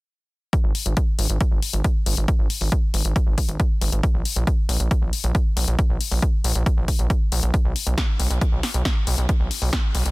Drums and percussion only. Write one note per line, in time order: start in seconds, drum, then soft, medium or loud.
0.53 kick loud
0.53 closed hi-hat medium
0.75 open hi-hat medium
0.86 closed hi-hat medium
0.97 kick loud
0.97 closed hi-hat medium
1.19 open hi-hat medium
1.30 closed hi-hat medium
1.41 kick loud
1.41 closed hi-hat medium
1.62 open hi-hat medium
1.73 closed hi-hat medium
1.84 kick loud
1.84 closed hi-hat medium
2.06 open hi-hat medium
2.17 closed hi-hat medium
2.28 kick loud
2.28 closed hi-hat medium
2.50 open hi-hat medium
2.61 open hi-hat medium
2.72 kick loud
2.72 closed hi-hat medium
2.94 open hi-hat medium
3.05 closed hi-hat medium
3.16 kick loud
3.16 closed hi-hat medium
3.38 kick medium
3.38 open hi-hat loud
3.49 closed hi-hat medium
3.60 kick loud
3.60 closed hi-hat medium
3.81 open hi-hat loud
3.92 closed hi-hat medium
4.03 kick loud
4.03 closed hi-hat medium
4.25 open hi-hat loud
4.36 closed hi-hat medium
4.47 kick loud
4.47 closed hi-hat medium
4.69 open hi-hat loud
4.80 closed hi-hat medium
4.91 kick loud
4.91 closed hi-hat medium
5.13 open hi-hat medium
5.24 closed hi-hat medium
5.35 kick loud
5.35 closed hi-hat medium
5.57 open hi-hat loud
5.68 closed hi-hat medium
5.79 kick loud
5.79 closed hi-hat medium
6.01 open hi-hat loud
6.12 open hi-hat medium
6.22 kick loud
6.22 closed hi-hat medium
6.44 open hi-hat loud
6.55 closed hi-hat medium
6.66 kick loud
6.66 closed hi-hat medium
6.88 kick medium
6.88 open hi-hat loud
6.99 closed hi-hat medium
7.10 kick loud
7.10 closed hi-hat medium
7.32 open hi-hat loud
7.43 closed hi-hat medium
7.54 kick loud
7.54 closed hi-hat medium
7.76 open hi-hat medium
7.87 closed hi-hat medium
7.98 kick loud
7.98 snare loud
7.98 closed hi-hat medium
8.20 open hi-hat medium
8.31 closed hi-hat medium
8.41 kick loud
8.41 closed hi-hat medium
8.63 snare medium
8.63 open hi-hat medium
8.74 closed hi-hat medium
8.85 kick loud
8.85 snare loud
8.85 closed hi-hat medium
9.07 open hi-hat loud
9.18 closed hi-hat medium
9.29 kick loud
9.29 closed hi-hat medium
9.51 open hi-hat medium
9.62 open hi-hat medium
9.73 kick loud
9.73 snare loud
9.95 open hi-hat loud
10.06 closed hi-hat medium